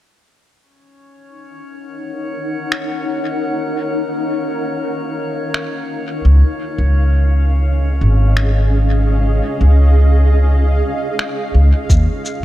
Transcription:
0.60 C#4 D#4 C#5
0.78 F5
0.96 A#4
1.11 F#5
2.72 finger snap
5.54 finger snap
6.25 C#2 C#4
6.44 D#5
6.54 G#4
6.78 C#2
8.01 G#1
8.37 finger snap
9.61 C#2
11.19 finger snap
11.54 C#2
11.90 D#2 D#4, kick, shaker
11.99 A#4
12.25 shaker

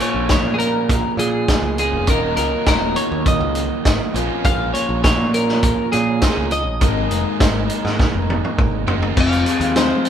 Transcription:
Already playing: A#2 F3 A#3 C#4 F4
0.00 C#5, closed hi-hat
0.14 A#1
0.29 C#5, kick, snare, closed hi-hat
0.45 A#2
0.54 G#4
0.59 A#4, closed hi-hat
0.89 A#1, kick, closed hi-hat
1.17 A#2 G#4, closed hi-hat
1.48 kick, snare, closed hi-hat
1.62 C#2
1.78 A#2 F3 A#3 C#4 F4 G#4, closed hi-hat
1.92 F1
2.07 D#1 D#2 A#2 D#3 F#3 A#3 D#4 A#4, kick, closed hi-hat
2.37 C#2 A#4, closed hi-hat
2.66 D#1 A#4, kick, snare, closed hi-hat
2.96 C#5, closed hi-hat
3.12 D#2
3.26 D#5, kick, closed hi-hat
3.40 C#2
3.55 closed hi-hat
3.85 G#1, kick, snare, closed hi-hat
4.14 A#1 A#2 F3 A#3 C#4 F4, closed hi-hat
4.43 A#1 F4 C#5 F5 G#5 A#5, kick, closed hi-hat
4.74 C#5, closed hi-hat
4.89 A#1
5.04 C#5, kick, snare, closed hi-hat
5.18 A#2
5.34 A#4, closed hi-hat
5.48 snare
5.63 A#1, kick, closed hi-hat
5.92 A#2 G#4, closed hi-hat
6.22 A#2 F3 A#3 C#4, kick, snare, closed hi-hat
6.26 F4
6.38 C#2
6.51 D#5, closed hi-hat
6.66 A#1
6.80 G#1 G#2 D#3 G#3 A#3 D#4 A#4 G#5 A#5, kick, closed hi-hat
7.11 F1, closed hi-hat
7.40 G#1, kick, snare, closed hi-hat
7.69 closed hi-hat
7.85 G#2, snare
8.00 kick, snare
8.13 F1
8.30 high tom
8.45 high tom
8.58 G#1, kick, mid tom
8.87 F#1 G#2 D#3 G#3 A#3 D#4, floor tom
9.02 floor tom
9.15 F1 F2 C3 F3 G#3 C4 F4 C5 G#5 C6, kick, crash
9.21 F5
9.32 closed hi-hat
9.46 F3 G#3 C4 F4, closed hi-hat
9.60 D#2 F3 G#3 C4 F4, closed hi-hat
9.75 F2 C3 F3 G#3 C4 F4 C5, snare, closed hi-hat
10.04 F3 G#3 C4, closed hi-hat

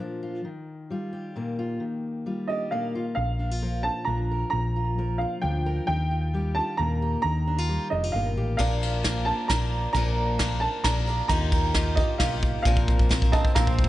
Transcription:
Already playing: A#2 F4 A#4
0.00 F3 D4
0.23 F4
0.44 D#3
0.90 G3 F4
1.13 G4
1.36 A#2 A#3
1.59 F4
1.80 D#3
2.26 G3 F4
2.48 G4 D#5
2.71 A#2 A#3 F5
2.95 F4
3.15 A#1 A#2 F5
3.39 D4
3.51 F4
3.62 F3 A#4
3.83 F4 A5
4.05 A#1 F3 D4 A#5
4.31 A#4
4.50 A#1 A#2 A#5
4.76 F4
4.98 F3 A#4
5.18 F4 F5
5.41 D2 F3 D4 G5
5.66 A#4
5.87 D#2 D#3 G5
6.11 F4
6.33 G3 G4
6.55 F4 A5
6.77 D#2 A#2 A#3 A#5
7.02 G4
7.22 D#2 D#3 A#5
7.47 D4
7.58 F4
7.69 G3 G4
7.90 F1 D4 D#5
8.04 F4
8.12 G1 A#2 A#3 F5
8.37 A1 G4
8.57 A#1 A#2 F3 A#3 D4 F4 A#4 D5 F5, kick, ride
8.82 ride
9.04 F3 A#3 D4 A#4, kick, snare, ride
9.25 A5
9.48 A#1 F3 A#3 D4 A#4 A#5, kick, snare, ride
9.93 A#1 A#2 F3 A#3 D4 A#4 A#5, kick, ride
10.39 F3 A#3 D4 A#4, kick, snare, ride
10.60 A5
10.84 A#1 F3 A#3 D4 A#4 A#5, kick, snare, ride
11.07 A#3 D4 A#4
11.28 D#2 D#3 A#3 D#4 F4 G4 A#5, kick, ride
11.52 kick, ride
11.74 D#3 A#3 F4 G4, kick, snare, ride
11.95 F4 G4 D#5, kick
12.00 A#3
12.18 B1 D#3 A#3 F4 F5, kick, snare, ride
12.23 G4
12.43 kick
12.62 A#1 A#2 F3 A#3 C5 F5, kick
12.67 A#3 C4 A#4
12.77 kick
12.88 kick
12.99 kick
13.09 F3 A#3 C4 A#4, kick, snare
13.22 kick
13.32 A#3 C4 A#4 D#5 A5, kick
13.45 kick
13.55 A#1 F3 A#3 C4 A#4 F5 A#5, kick, snare
13.67 kick
13.79 kick
13.84 kick

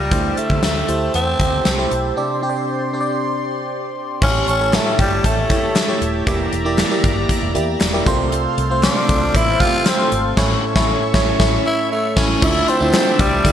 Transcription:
Already playing: G3 A#3 F4 G4 D5 E5
0.11 D2 D3 A3 E4 G4 C5 E5 A5, kick, closed hi-hat
0.37 A3, closed hi-hat
0.50 D3, kick
0.63 D2 A3, snare, closed hi-hat
0.88 D2 A3 E4 G4 C5, closed hi-hat
1.14 E2 C4, closed hi-hat
1.40 D2, kick, closed hi-hat
1.65 C2, snare, closed hi-hat
1.78 A3 E4 G4 C5
1.91 B1, closed hi-hat
2.16 C3 C4 D4 G4 D5 C6
2.42 C4 D4 G4 C5
2.50 D5
2.93 C4 D4 G4 C5
3.01 D5
4.21 A1 A2 A3 C#4 E4 G4 C#5 E5 A5 C#6, kick, crash
4.48 A1 C#4 C#6, closed hi-hat
4.60 A3 E4 G4 C#5
4.73 A3 A5, snare, clap, closed hi-hat
4.85 A3 E4 G4 C#5
4.99 G1 G3 G5, kick, closed hi-hat
5.24 A1 A3 A5, kick, closed hi-hat
5.50 A3 E4 G4 C#5, kick, closed hi-hat
5.76 snare, clap, closed hi-hat
5.88 A3 E4 G4 C#5
6.01 D#1, closed hi-hat
6.26 E1 E3 A#3 E4 G4 D5 A#5, kick, closed hi-hat
6.53 E1, closed hi-hat
6.65 A#3 E4 G4 D5
6.78 snare, clap, closed hi-hat
6.90 A#3 E4 G4 D5
7.04 G1, kick, closed hi-hat
7.29 kick, closed hi-hat
7.42 E1
7.55 E2 A#3 E4 G4 D5, closed hi-hat
7.81 E1, snare, clap, closed hi-hat
7.93 A#3 E4 G4 D5
8.06 C2 C3 A3 C4 F4 A4 C5 F5 C6, kick, closed hi-hat
8.32 closed hi-hat
8.58 C2, closed hi-hat
8.70 A3 C4 F4 C5
8.83 D4 D6, snare, clap, closed hi-hat
8.96 A3 C4 F4 C5
9.09 C2, kick, closed hi-hat
9.35 A1 E4 E6, kick, closed hi-hat
9.60 A3 C4 F4 G4 F6, kick, closed hi-hat
9.86 C4 C6, snare, clap, closed hi-hat
9.98 A3 C4 F4 C5
10.12 G#1, closed hi-hat
10.37 A1 A2 A3 C#4 E4 C#5 E5 C#6, kick, snare, crash
10.75 A1 A3 C#4 E4 C#5, kick, snare
11.13 A1 A3 C#4 E4 C#5, kick, snare
11.39 A1 A3 C#4 E4 C#5, kick, snare
11.66 E4
11.92 A3
12.16 A1 A3 C#4 E4 C#5, kick, snare, crash
12.42 D2 D3 F3 A3 D4 E4 F4 D5 E5 A5 E6, kick, crash
12.68 C4 C6, closed hi-hat
12.80 D2 A3 D4 E4 F4 E5
12.94 snare, clap, closed hi-hat, tambourine
13.19 C2 G3 G5, kick, closed hi-hat
13.44 D2 A3 D4 E4 F4 D5, kick, closed hi-hat

